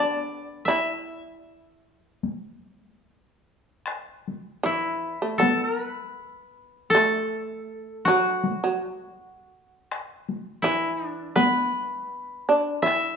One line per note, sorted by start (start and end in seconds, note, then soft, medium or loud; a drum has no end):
0.00 0.64 D4 medium
0.00 0.37 A4 medium
0.00 0.97 B4 medium
0.00 1.50 D5 medium
0.65 3.00 E4 medium
0.65 2.99 E5 medium
0.65 taiko rim soft
2.23 taiko high soft
3.87 taiko rim medium
4.28 taiko high soft
4.63 5.17 E3 medium
4.63 6.92 E4 medium
5.22 5.39 A3 medium
5.38 6.91 B3 medium
5.38 5.65 A4 medium
5.42 taiko high medium
5.65 5.83 A#4 medium
5.83 7.16 B4 medium
6.90 8.80 A4 medium
6.95 8.03 A3 medium
6.95 taiko rim soft
8.05 8.59 F#3 medium
8.05 10.16 F#4 medium
8.44 taiko high medium
8.64 8.80 F#3 medium
9.91 taiko rim medium
10.29 taiko high soft
10.62 11.32 E3 medium
10.62 11.07 E4 medium
11.07 12.89 D4 medium
11.36 12.43 B3 medium
11.36 13.13 B4 medium
11.36 taiko high medium
12.49 12.82 D4 medium
12.82 13.16 E4 medium
12.82 13.16 E5 medium
12.82 taiko rim soft